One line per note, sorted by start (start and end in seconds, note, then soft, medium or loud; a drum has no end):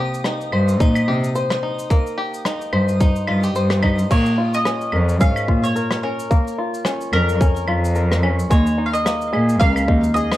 0.00 1.89 A#3 medium
0.00 0.80 C4 medium
0.00 0.25 D#4 medium
0.00 1.07 G4 medium
0.00 4.11 D#6 medium
0.14 cabasa medium
0.24 0.79 D#4 medium
0.24 cross-stick medium
0.24 cabasa medium
0.41 cabasa soft
0.52 0.82 G2 medium
0.52 1.34 C5 medium
0.52 claves medium
0.68 cabasa medium
0.80 0.92 A#2 medium
0.80 1.62 D#4 medium
0.80 kick loud
0.80 cabasa medium
0.95 cabasa soft
0.95 claves medium
1.08 1.19 C3 medium
1.08 2.16 G4 medium
1.24 cabasa medium
1.35 2.72 C5 medium
1.35 cabasa medium
1.50 cross-stick medium
1.50 cabasa soft
1.63 2.44 D#4 medium
1.79 cabasa medium
1.90 4.09 A#3 medium
1.90 kick loud
1.90 cabasa medium
2.07 cabasa soft
2.18 3.28 G4 medium
2.34 cabasa medium
2.45 2.99 D#4 medium
2.45 cross-stick medium
2.45 cabasa medium
2.61 cabasa soft
2.73 2.94 G2 medium
2.73 3.54 C5 medium
2.73 claves medium
2.88 cabasa medium
3.00 3.82 D#4 medium
3.00 kick loud
3.00 cabasa medium
3.16 cabasa soft
3.27 3.55 G2 medium
3.27 3.43 F4 medium
3.27 claves medium
3.43 4.17 G4 soft
3.43 cabasa medium
3.55 4.06 G2 medium
3.55 4.17 C5 medium
3.55 cabasa medium
3.70 cross-stick medium
3.70 cabasa medium
3.83 4.17 D#4 medium
3.83 kick medium
3.83 claves medium
3.99 cabasa medium
4.11 4.22 A#2 loud
4.11 6.29 A#3 medium
4.11 4.54 C#5 medium
4.11 kick loud
4.11 crash medium
4.11 cabasa medium
4.26 cabasa soft
4.38 5.47 F4 medium
4.54 5.23 D#5 loud
4.54 cabasa medium
4.65 5.19 C#4 medium
4.65 cross-stick medium
4.65 cabasa medium
4.81 cabasa soft
4.92 5.22 F2 medium
4.92 5.75 A#4 medium
4.92 claves medium
5.09 cabasa medium
5.20 5.32 G#2 medium
5.20 6.02 C#4 medium
5.20 5.65 F5 loud
5.20 kick loud
5.20 cabasa medium
5.36 cabasa medium
5.36 claves medium
5.48 5.60 A#2 medium
5.48 6.57 F4 medium
5.48 kick medium
5.64 6.03 C#5 medium
5.64 cabasa medium
5.76 7.13 A#4 medium
5.76 cabasa medium
5.91 cross-stick medium
5.91 cabasa soft
6.03 6.85 C#4 medium
6.03 6.82 A#4 medium
6.19 cabasa medium
6.31 8.50 A#3 medium
6.31 kick loud
6.31 cabasa medium
6.48 cabasa medium
6.58 7.67 F4 medium
6.74 cabasa medium
6.85 7.40 C#4 medium
6.85 cross-stick medium
6.85 cabasa medium
7.01 cabasa soft
7.13 7.34 F2 medium
7.13 8.19 A#4 loud
7.13 7.95 A#4 medium
7.13 claves medium
7.29 cabasa medium
7.41 8.22 C#4 medium
7.41 kick loud
7.41 cabasa medium
7.56 cabasa medium
7.68 8.46 F2 medium
7.68 8.57 F4 medium
7.68 claves medium
7.84 cabasa medium
7.95 9.32 A#4 medium
7.95 cabasa medium
8.12 cross-stick medium
8.12 cabasa medium
8.23 8.57 C#4 medium
8.23 claves medium
8.39 cabasa medium
8.50 8.62 D#2 medium
8.50 10.37 G#3 medium
8.50 8.84 C#5 medium
8.50 kick loud
8.50 cabasa medium
8.67 cabasa medium
8.78 9.87 D#4 medium
8.86 8.94 F5 medium
8.93 9.57 D#5 medium
8.93 cabasa medium
9.05 9.59 A#3 medium
9.05 cross-stick medium
9.05 cabasa medium
9.21 cabasa medium
9.33 9.62 A#2 medium
9.33 10.15 G#4 medium
9.33 claves medium
9.49 cabasa medium
9.60 9.72 C#2 loud
9.60 10.37 A#3 medium
9.60 10.17 F5 loud
9.60 kick loud
9.60 cabasa medium
9.76 cabasa medium
9.76 claves medium
9.88 10.00 D#2 medium
9.88 10.37 D#4 medium
9.88 kick medium
10.04 cabasa medium
10.14 10.37 G#4 medium
10.14 10.37 D#5 loud
10.14 cabasa medium
10.32 cross-stick medium
10.32 cabasa soft